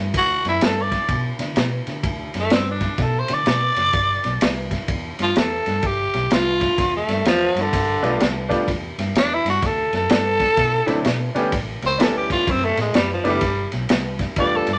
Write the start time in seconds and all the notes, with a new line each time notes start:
Already playing: G2
0.14 D2 F#4, kick, ride
0.45 F#2 E4, snare, ride
0.61 G2, snare, ride
0.66 A4
0.82 D5
0.92 kick, snare, ride
1.09 B2, kick, ride
1.39 D3, snare, ride
1.56 B2, snare, ride
1.87 D3, snare, ride
2.03 D2, kick, ride
2.34 F#2, snare, ride
2.40 A3
2.50 G2 C4, snare, ride
2.71 D4
2.81 kick, snare, ride
2.98 B2, kick, snare, ride
3.02 A4
3.19 C5
3.28 D3, snare, ride
3.34 D5
3.46 B2, snare, ride
3.76 F#1, snare, ride
3.93 G1, kick, ride
4.24 B1, snare, ride
4.41 C2, snare, ride
4.71 kick, snare, ride
4.88 E2, kick, ride
5.19 G2 F4, snare, ride
5.36 E2 A4, snare, ride
5.66 G2, snare, ride
5.83 G1 G4, kick, ride
6.14 B1, snare, ride
6.31 C2 F4, snare, ride
6.61 kick, snare, ride
6.78 E2, kick, snare, ride
6.96 A3
7.08 G2, snare, ride
7.25 E2 F3, snare, ride
7.55 G2, snare, ride
7.61 D3
7.73 G1, kick, snare, ride
8.03 B1 G3 A3 B3 D4 F4, snare, ride
8.20 C2, snare, ride
8.49 G3 A3 B3 D4 F4, kick, snare, ride
8.68 E2, kick, snare, ride
8.98 G2, snare, ride
9.15 E2 D4, snare, ride
9.34 E4
9.45 G2, snare, ride
9.50 F#4
9.62 D2 A4, kick, snare, ride
9.93 F#2 A4, snare, ride
10.09 G2, snare, ride
10.40 kick, snare, ride
10.57 B2, kick, snare, ride
10.86 D3 F#3 A3 C4 D4 E4, snare, ride
11.05 B2, snare, ride
11.35 D3 G3 A3 B3 C#4 G4, snare, ride
11.52 A1, kick, snare, ride
11.82 C#2 C5, snare, ride
11.98 G3 A3 B3 C#4 E4 A4, snare, ride
12.17 G4
12.30 F4, kick, snare, ride
12.47 F#2 C4, kick, ride
12.65 A3
12.77 A2 G#3, snare, ride
12.94 F#2 G3, snare, ride
13.13 F3
13.24 F#1 G3 A3 B3 D4 E4, snare, ride
13.29 G3
13.41 G1, kick, snare, ride
13.72 B1, snare, ride
13.89 C2, snare, ride
14.19 kick, snare, ride
14.36 E2 G3 A3 B3 D4 F4 D5, kick, ride
14.56 A4
14.67 G2, snare, ride
14.73 D5